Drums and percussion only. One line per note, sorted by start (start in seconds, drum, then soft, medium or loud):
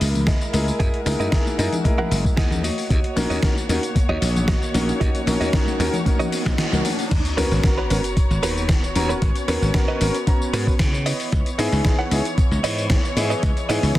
0.01 open hi-hat loud
0.01 tambourine medium
0.14 tambourine soft
0.14 high conga medium
0.14 low conga medium
0.27 kick loud
0.27 snare loud
0.27 closed hi-hat medium
0.27 tambourine soft
0.42 tambourine soft
0.53 open hi-hat medium
0.53 tambourine medium
0.53 high conga medium
0.68 tambourine soft
0.80 kick loud
0.80 closed hi-hat medium
0.80 tambourine soft
0.94 closed hi-hat soft
1.06 finger snap medium
1.06 open hi-hat loud
1.06 tambourine medium
1.06 high conga medium
1.21 tambourine soft
1.32 kick loud
1.32 snare loud
1.32 closed hi-hat medium
1.32 tambourine soft
1.47 tambourine soft
1.47 high conga medium
1.59 open hi-hat loud
1.59 tambourine medium
1.72 closed hi-hat medium
1.72 tambourine soft
1.72 low conga medium
1.84 kick loud
1.84 closed hi-hat medium
1.84 tambourine soft
1.84 high conga medium
1.99 low conga medium
2.12 open hi-hat loud
2.12 tambourine medium
2.25 kick medium
2.25 tambourine soft
2.25 high conga medium
2.37 kick loud
2.37 snare loud
2.37 closed hi-hat medium
2.37 tambourine soft
2.51 tambourine soft
2.51 low conga medium
2.64 open hi-hat medium
2.64 tambourine medium
2.64 high conga medium
2.78 open hi-hat medium
2.78 tambourine soft
2.90 kick loud
2.90 closed hi-hat medium
2.90 tambourine soft
3.04 closed hi-hat medium
3.16 finger snap medium
3.16 open hi-hat loud
3.16 tambourine medium
3.16 high conga medium
3.30 open hi-hat medium
3.30 tambourine soft
3.43 kick loud
3.43 snare loud
3.43 closed hi-hat medium
3.43 tambourine soft
3.56 tambourine soft
3.56 high conga medium
3.69 open hi-hat loud
3.69 tambourine medium
3.83 closed hi-hat medium
3.83 tambourine soft
3.95 kick loud
3.95 closed hi-hat medium
3.95 tambourine soft
3.95 high conga medium
4.22 open hi-hat loud
4.22 tambourine medium
4.36 tambourine soft
4.36 high conga medium
4.36 low conga medium
4.48 kick loud
4.48 snare loud
4.48 closed hi-hat medium
4.48 tambourine soft
4.63 tambourine soft
4.74 open hi-hat loud
4.74 tambourine medium
4.74 high conga medium
4.89 tambourine soft
5.01 kick loud
5.01 closed hi-hat medium
5.01 tambourine soft
5.15 closed hi-hat medium
5.15 tambourine soft
5.26 finger snap medium
5.26 open hi-hat loud
5.26 tambourine medium
5.26 high conga medium
5.41 open hi-hat medium
5.41 tambourine soft
5.53 kick loud
5.53 snare loud
5.53 closed hi-hat medium
5.53 tambourine soft
5.67 tambourine soft
5.67 high conga medium
5.80 finger snap medium
5.80 open hi-hat medium
5.80 tambourine medium
5.93 closed hi-hat medium
5.93 tambourine soft
5.93 low conga medium
6.06 kick loud
6.06 closed hi-hat medium
6.06 tambourine soft
6.06 high conga medium
6.20 closed hi-hat soft
6.20 tambourine soft
6.20 low conga medium
6.32 open hi-hat loud
6.32 tambourine medium
6.45 finger snap medium
6.45 kick medium
6.45 snare soft
6.45 tambourine soft
6.45 high conga medium
6.58 snare loud
6.58 closed hi-hat medium
6.58 tambourine soft
6.72 tambourine soft
6.72 low conga medium
6.85 open hi-hat loud
6.85 tambourine medium
6.85 high conga medium
6.99 open hi-hat medium
6.99 tambourine soft
7.11 kick loud
7.11 closed hi-hat medium
7.11 crash loud
7.11 tambourine soft
7.25 closed hi-hat medium
7.25 tambourine soft
7.38 finger snap medium
7.38 open hi-hat loud
7.38 tambourine medium
7.52 open hi-hat medium
7.52 tambourine soft
7.64 kick loud
7.64 snare loud
7.64 closed hi-hat medium
7.64 tambourine soft
7.90 open hi-hat loud
7.90 tambourine medium
8.04 closed hi-hat medium
8.04 tambourine soft
8.17 kick loud
8.17 closed hi-hat medium
8.17 tambourine soft
8.31 tambourine soft
8.43 open hi-hat loud
8.43 tambourine medium
8.57 tambourine soft
8.69 kick loud
8.69 snare loud
8.69 closed hi-hat medium
8.69 tambourine soft
8.84 tambourine soft
8.96 open hi-hat loud
8.96 tambourine medium
9.10 tambourine soft
9.22 kick loud
9.22 closed hi-hat medium
9.22 tambourine soft
9.35 closed hi-hat medium
9.35 tambourine soft
9.48 finger snap medium
9.48 open hi-hat loud
9.48 tambourine medium
9.63 tambourine soft
9.74 kick loud
9.74 snare loud
9.74 closed hi-hat medium
9.74 tambourine soft
10.01 open hi-hat loud
10.01 tambourine medium
10.15 closed hi-hat medium
10.15 tambourine soft
10.27 kick loud
10.27 closed hi-hat medium
10.27 tambourine soft
10.42 tambourine soft
10.54 open hi-hat loud
10.54 tambourine medium
10.67 kick medium
10.67 tambourine soft
10.79 kick loud
10.79 snare loud
10.79 closed hi-hat medium
10.79 tambourine soft
10.94 tambourine soft
11.06 open hi-hat loud
11.06 tambourine medium
11.20 open hi-hat medium
11.20 tambourine soft
11.32 kick loud
11.32 closed hi-hat medium
11.32 tambourine soft
11.46 closed hi-hat soft
11.46 tambourine soft
11.59 finger snap medium
11.59 open hi-hat loud
11.59 tambourine medium
11.72 open hi-hat medium
11.72 tambourine soft
11.85 kick loud
11.85 snare loud
11.85 closed hi-hat medium
11.85 tambourine soft
12.11 open hi-hat loud
12.11 tambourine medium
12.25 closed hi-hat medium
12.25 tambourine soft
12.38 kick loud
12.38 closed hi-hat medium
12.38 tambourine soft
12.52 tambourine soft
12.64 open hi-hat loud
12.64 tambourine medium
12.78 tambourine soft
12.90 kick loud
12.90 snare loud
12.90 closed hi-hat medium
12.90 tambourine soft
13.05 tambourine soft
13.17 open hi-hat loud
13.17 tambourine medium
13.31 tambourine soft
13.43 kick loud
13.43 closed hi-hat medium
13.43 tambourine soft
13.57 closed hi-hat soft
13.57 tambourine soft
13.69 finger snap medium
13.69 open hi-hat loud
13.69 tambourine medium
13.83 open hi-hat medium
13.83 tambourine soft
13.95 kick loud
13.95 snare loud